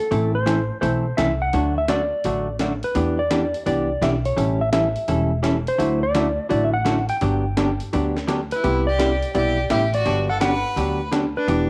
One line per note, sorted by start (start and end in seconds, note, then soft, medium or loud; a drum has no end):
0.00 0.35 A4 medium
0.11 0.68 A1 medium
0.11 0.34 E3 medium
0.11 0.33 A3 medium
0.11 0.34 C4 medium
0.11 0.34 E4 medium
0.11 0.34 A4 medium
0.11 open hi-hat soft
0.35 0.80 C5 medium
0.46 0.58 E3 medium
0.46 0.58 A3 medium
0.46 0.58 C4 medium
0.46 0.58 E4 medium
0.46 0.59 A4 medium
0.46 snare medium
0.46 closed hi-hat medium
0.81 1.12 B1 medium
0.81 1.04 E3 soft
0.81 1.04 A3 medium
0.81 1.04 C4 medium
0.81 1.05 E4 medium
0.81 1.05 A4 medium
0.81 1.18 C5 medium
0.81 open hi-hat soft
1.17 1.48 C2 medium
1.17 1.30 E3 medium
1.17 1.30 A3 medium
1.17 1.30 C4 medium
1.17 1.30 E4 medium
1.17 1.30 A4 medium
1.17 1.41 E5 medium
1.17 snare medium
1.17 closed hi-hat medium
1.42 1.74 F#5 loud
1.53 2.10 D2 medium
1.53 1.76 D3 medium
1.53 1.76 F#3 medium
1.53 1.76 A3 medium
1.53 1.76 D4 medium
1.53 1.76 F#4 medium
1.53 open hi-hat soft
1.78 1.90 E5 medium
1.88 2.00 D3 medium
1.88 2.01 F#3 medium
1.88 2.01 A3 medium
1.88 2.01 D4 medium
1.88 2.01 F#4 medium
1.88 2.56 D5 loud
1.88 snare medium
1.88 closed hi-hat medium
2.24 2.81 A1 medium
2.24 2.47 D3 medium
2.24 2.47 F#3 medium
2.24 2.47 A3 medium
2.24 2.47 D4 medium
2.24 2.47 F#4 medium
2.24 open hi-hat soft
2.59 2.72 D3 medium
2.59 2.72 F#3 medium
2.59 2.72 A3 medium
2.59 2.72 D4 medium
2.59 2.72 F#4 medium
2.59 snare medium
2.59 closed hi-hat medium
2.83 3.20 B4 medium
2.83 open hi-hat soft
2.95 3.52 E2 medium
2.95 3.17 E3 medium
2.95 3.18 B3 medium
2.95 3.18 D4 medium
2.95 3.18 G4 medium
2.95 open hi-hat soft
3.19 3.66 D5 medium
3.31 3.42 E3 medium
3.31 3.43 B3 medium
3.31 3.43 D4 medium
3.31 3.43 G4 medium
3.31 snare medium
3.31 closed hi-hat medium
3.54 open hi-hat soft
3.66 3.96 C2 medium
3.66 3.88 E3 medium
3.66 3.89 B3 medium
3.66 3.89 D4 medium
3.66 3.89 G4 medium
3.66 4.03 D5 medium
3.66 open hi-hat soft
4.01 4.32 B1 medium
4.01 4.13 E3 medium
4.01 4.14 B3 medium
4.01 4.14 D4 medium
4.01 4.14 G4 medium
4.01 4.09 E5 medium
4.01 snare medium
4.01 closed hi-hat medium
4.25 4.62 C#5 medium
4.25 open hi-hat soft
4.37 4.94 A1 medium
4.37 4.59 E3 medium
4.37 4.59 G3 medium
4.37 4.60 C#4 medium
4.37 4.60 E4 medium
4.37 4.60 A4 medium
4.37 open hi-hat soft
4.61 4.72 E5 loud
4.73 4.84 E3 medium
4.73 4.84 G3 medium
4.73 4.85 C#4 medium
4.73 4.85 E4 medium
4.73 4.85 A4 medium
4.73 5.40 E5 loud
4.73 snare medium
4.73 closed hi-hat medium
4.96 open hi-hat soft
5.08 5.65 E1 medium
5.08 5.30 E3 soft
5.08 5.31 G3 soft
5.08 5.31 C#4 medium
5.08 5.31 E4 medium
5.08 5.31 A4 medium
5.08 open hi-hat soft
5.43 5.55 E3 medium
5.43 5.55 G3 medium
5.43 5.55 C#4 medium
5.43 5.55 E4 medium
5.43 5.56 A4 medium
5.43 snare medium
5.43 closed hi-hat medium
5.67 6.03 C5 medium
5.67 open hi-hat soft
5.78 6.36 D2 medium
5.78 6.01 D3 medium
5.78 6.01 F#3 medium
5.78 6.01 A3 medium
5.78 6.01 E4 medium
5.78 6.02 F#4 medium
5.78 open hi-hat medium
6.03 6.47 D5 loud
6.14 6.26 D3 medium
6.14 6.27 F#3 medium
6.14 6.27 A3 medium
6.14 6.27 E4 medium
6.14 6.27 F#4 medium
6.14 snare medium
6.14 closed hi-hat medium
6.49 7.08 A1 medium
6.49 6.72 D3 medium
6.49 6.72 F#3 medium
6.49 6.72 A3 medium
6.49 6.73 E4 medium
6.49 6.73 F#4 medium
6.49 6.64 D5 medium
6.49 open hi-hat soft
6.64 6.73 E5 medium
6.74 7.09 F#5 loud
6.85 6.97 D3 medium
6.85 6.97 F#3 medium
6.85 6.97 A3 medium
6.85 6.97 E4 medium
6.85 6.97 F#4 medium
6.85 snare medium
6.85 closed hi-hat medium
7.09 8.24 G5 loud
7.09 open hi-hat soft
7.21 7.79 G1 medium
7.21 7.44 D3 medium
7.21 7.44 F#3 medium
7.21 7.44 B3 medium
7.21 7.44 D4 medium
7.21 7.44 G4 medium
7.21 open hi-hat soft
7.57 7.69 D3 medium
7.57 7.69 F#3 medium
7.57 7.69 B3 medium
7.57 7.69 D4 medium
7.57 7.70 G4 medium
7.57 snare medium
7.57 closed hi-hat medium
7.80 open hi-hat soft
7.93 8.50 D2 medium
7.93 8.15 D3 soft
7.93 8.15 F#3 medium
7.93 8.15 B3 medium
7.93 8.16 D4 medium
7.93 8.16 G4 medium
7.93 open hi-hat medium
8.16 snare soft
8.27 8.40 D3 medium
8.27 8.40 F#3 medium
8.27 8.40 B3 medium
8.27 8.40 D4 medium
8.27 8.40 G4 medium
8.27 snare medium
8.27 closed hi-hat medium
8.51 8.85 E4 medium
8.51 8.88 B4 medium
8.51 open hi-hat soft
8.64 9.21 C2 medium
8.64 8.86 C3 medium
8.64 8.86 G3 medium
8.64 8.86 B3 medium
8.64 8.86 E4 medium
8.64 8.86 G4 medium
8.64 open hi-hat soft
8.87 9.32 G4 medium
8.87 9.34 D5 medium
8.99 9.11 C3 medium
8.99 9.11 G3 medium
8.99 9.11 B3 medium
8.99 9.11 E4 medium
8.99 9.11 G4 medium
8.99 snare medium
8.99 closed hi-hat medium
9.22 open hi-hat soft
9.35 9.65 B1 medium
9.35 9.57 C3 medium
9.35 9.57 G3 medium
9.35 9.57 B3 medium
9.35 9.57 E4 medium
9.35 9.57 G4 medium
9.35 9.68 G4 medium
9.35 9.71 D5 medium
9.35 open hi-hat medium
9.70 10.01 A1 medium
9.70 9.82 C3 medium
9.70 9.82 G3 medium
9.70 9.82 B3 medium
9.70 9.83 E4 medium
9.70 9.92 G4 medium
9.70 9.83 G4 medium
9.70 9.95 E5 medium
9.70 snare medium
9.70 closed hi-hat medium
9.94 10.27 F#4 medium
9.94 10.27 D5 medium
9.94 open hi-hat soft
10.06 10.63 G1 medium
10.06 10.28 D3 medium
10.06 10.28 F#3 medium
10.06 10.28 B3 medium
10.06 10.28 D4 medium
10.06 10.29 G4 medium
10.06 open hi-hat soft
10.29 10.40 A4 medium
10.29 10.40 F#5 loud
10.41 10.53 D3 medium
10.41 10.53 F#3 medium
10.41 10.53 B3 medium
10.41 10.53 D4 medium
10.41 10.53 G4 medium
10.41 11.08 B4 medium
10.41 11.08 F#5 loud
10.41 snare medium
10.41 closed hi-hat medium
10.76 11.33 D2 medium
10.76 10.99 D3 medium
10.76 10.99 F#3 medium
10.76 10.99 B3 medium
10.76 11.00 D4 medium
10.76 11.00 G4 medium
10.76 open hi-hat soft
11.11 11.24 D3 medium
11.11 11.24 F#3 medium
11.11 11.24 B3 medium
11.11 11.24 D4 medium
11.11 11.24 G4 medium
11.11 snare medium
11.11 closed hi-hat medium
11.37 11.69 D4 medium
11.37 11.70 B4 medium
11.48 11.70 E1 medium
11.48 11.70 E3 medium
11.48 11.70 B3 medium
11.48 11.70 D4 medium
11.48 11.70 G4 medium
11.48 open hi-hat medium